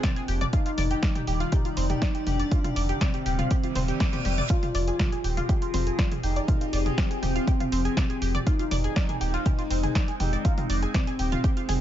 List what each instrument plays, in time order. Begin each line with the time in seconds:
Already playing: ambient pad F3 A#3 D4, soft synth lead C4
0.03 synth arpeggio sound D5 D6, kick, snare, closed hi-hat, mid tom
0.16 synth arpeggio sound G#4 G#5, closed hi-hat
0.28 analog synth bass F1, synth arpeggio sound G4 G5, open hi-hat
0.41 synth arpeggio sound D5 D6, closed hi-hat, mid tom
0.53 ambient pad C3 D#3 G3 D5, soft synth lead D#4, synth arpeggio sound F4 F5, kick, closed hi-hat
0.66 synth arpeggio sound F4 F5, closed hi-hat
0.78 analog synth bass F1, synth arpeggio sound D5 D6, mid tom, open hi-hat
0.91 synth arpeggio sound G4 G5, closed hi-hat
1.03 synth arpeggio sound D5 D6, kick, snare, closed hi-hat
1.15 synth arpeggio sound G4 G5, closed hi-hat, mid tom
1.27 analog synth bass D#1, synth arpeggio sound G4 G5, open hi-hat
1.40 synth arpeggio sound F4 F5, closed hi-hat
1.52 soft synth lead D#4, synth arpeggio sound G4 G5, kick, closed hi-hat, mid tom
1.65 synth arpeggio sound F4 F5, closed hi-hat
1.77 analog synth bass F1, synth arpeggio sound C4 C5, open hi-hat
1.90 synth arpeggio sound G4 G5, closed hi-hat, mid tom
2.02 synth arpeggio sound D5 D6, kick, snare, closed hi-hat
2.15 synth arpeggio sound G4 G5, closed hi-hat
2.27 analog synth bass F1, soft synth lead D4, synth arpeggio sound G4 G5, mid tom, open hi-hat
2.40 synth arpeggio sound D5 D6, closed hi-hat
2.51 synth arpeggio sound F4 F5, kick, closed hi-hat
2.64 synth arpeggio sound F4 F5, closed hi-hat, mid tom
2.76 analog synth bass F1, synth arpeggio sound D5 D6, open hi-hat
2.89 synth arpeggio sound G4 G5, closed hi-hat
3.01 soft synth lead C4, synth arpeggio sound D5 D6, kick, snare, closed hi-hat, mid tom
3.14 synth arpeggio sound G4 G5, closed hi-hat
3.26 analog synth bass D#1, synth arpeggio sound G4 G5, open hi-hat
3.39 synth arpeggio sound F4 F5, closed hi-hat, mid tom
3.51 synth arpeggio sound G4 G5, kick, closed hi-hat, reverse cymbal
3.64 synth arpeggio sound F4 F5, closed hi-hat
3.75 analog synth bass D#1, synth arpeggio sound C4 C5, mid tom, open hi-hat
3.88 synth arpeggio sound G4 G5, closed hi-hat
4.00 synth arpeggio sound D5 D6, kick, snare, closed hi-hat
4.13 synth arpeggio sound G4 G5, closed hi-hat, mid tom, high tom
4.25 analog synth bass F1, synth arpeggio sound G4 G5, open hi-hat, mid tom
4.38 synth arpeggio sound D5 D6, closed hi-hat, mid tom
4.50 ambient pad F3 C4 G4 G#4, synth arpeggio sound F4 F5, soft synth lead F4, kick, closed hi-hat
4.63 synth arpeggio sound F4 F5, closed hi-hat, mid tom
4.75 analog synth bass F1, synth arpeggio sound D5 D6, open hi-hat
4.88 synth arpeggio sound G#4 G#5, closed hi-hat
4.99 synth arpeggio sound D5 D6, kick, snare, closed hi-hat, mid tom
5.12 synth arpeggio sound G#4 G#5, closed hi-hat
5.24 analog synth bass D#1, synth arpeggio sound G4 G5, open hi-hat
5.37 synth arpeggio sound F4 F5, closed hi-hat, mid tom
5.49 soft synth lead F4, synth arpeggio sound G4 G5, kick, closed hi-hat
5.62 synth arpeggio sound F4 F5, closed hi-hat
5.74 analog synth bass F1, synth arpeggio sound C4 C5, mid tom, open hi-hat
5.87 synth arpeggio sound G#4 G#5, closed hi-hat
5.99 synth arpeggio sound D5 D6, kick, snare, closed hi-hat
6.12 synth arpeggio sound G#4 G#5, closed hi-hat, mid tom
6.23 analog synth bass F1, soft synth lead D#4, synth arpeggio sound G4 G5, open hi-hat
6.36 synth arpeggio sound D5 D6, closed hi-hat
6.48 synth arpeggio sound F4 F5, kick, closed hi-hat, mid tom
6.61 synth arpeggio sound F4 F5, closed hi-hat
6.73 analog synth bass F1, synth arpeggio sound D5 D6, open hi-hat
6.86 synth arpeggio sound G#4 G#5, closed hi-hat, mid tom
6.98 soft synth lead C4, synth arpeggio sound D5 D6, kick, snare, closed hi-hat
7.11 synth arpeggio sound G#4 G#5, closed hi-hat
7.23 analog synth bass D#1, synth arpeggio sound G4 G5, mid tom, open hi-hat
7.35 synth arpeggio sound F4 F5, closed hi-hat
7.47 synth arpeggio sound G4 G5, kick, closed hi-hat
7.60 synth arpeggio sound F4 F5, closed hi-hat, mid tom
7.72 analog synth bass F1, synth arpeggio sound C4 C5, open hi-hat
7.85 synth arpeggio sound G#4 G#5, closed hi-hat
7.97 synth arpeggio sound D5 D6, kick, snare, closed hi-hat, mid tom
8.10 synth arpeggio sound G#4 G#5, closed hi-hat
8.22 analog synth bass F1, synth arpeggio sound G4 G5, open hi-hat
8.35 synth arpeggio sound D5 D6, closed hi-hat, mid tom
8.47 ambient pad G#3 C4 D#4, soft synth lead D#4, synth arpeggio sound F4 F5, kick, closed hi-hat
8.59 synth arpeggio sound F4 F5, closed hi-hat
8.71 analog synth bass F1, synth arpeggio sound D5 D6, mid tom, open hi-hat
8.84 synth arpeggio sound G#4 G#5, closed hi-hat
8.96 synth arpeggio sound D5 D6, kick, snare, closed hi-hat
9.09 synth arpeggio sound G#4 G#5, closed hi-hat, mid tom
9.21 analog synth bass D#1, synth arpeggio sound G4 G5, open hi-hat
9.34 synth arpeggio sound F4 F5, closed hi-hat
9.46 soft synth lead D#4, synth arpeggio sound G4 G5, kick, closed hi-hat, mid tom
9.58 synth arpeggio sound F4 F5, closed hi-hat
9.70 analog synth bass F1, synth arpeggio sound C4 C5, open hi-hat
9.83 synth arpeggio sound G#4 G#5, closed hi-hat, mid tom
9.95 synth arpeggio sound D5 D6, kick, snare, closed hi-hat
10.08 synth arpeggio sound G#4 G#5, closed hi-hat
10.20 analog synth bass F1, soft synth lead D#4, synth arpeggio sound G4 G5, mid tom, open hi-hat
10.33 synth arpeggio sound D5 D6, closed hi-hat
10.45 synth arpeggio sound F4 F5, kick, closed hi-hat
10.58 synth arpeggio sound F4 F5, closed hi-hat, mid tom
10.70 analog synth bass F1, synth arpeggio sound D5 D6, open hi-hat
10.82 synth arpeggio sound G#4 G#5, closed hi-hat
10.94 soft synth lead C4, synth arpeggio sound D5 D6, kick, snare, closed hi-hat, mid tom
11.07 synth arpeggio sound G#4 G#5, closed hi-hat
11.19 analog synth bass D#1, synth arpeggio sound G4 G5, open hi-hat
11.32 synth arpeggio sound F4 F5, closed hi-hat, mid tom
11.44 synth arpeggio sound G4 G5, kick, closed hi-hat
11.57 synth arpeggio sound F4 F5, closed hi-hat
11.69 analog synth bass F1, synth arpeggio sound G#4 G#5, mid tom, open hi-hat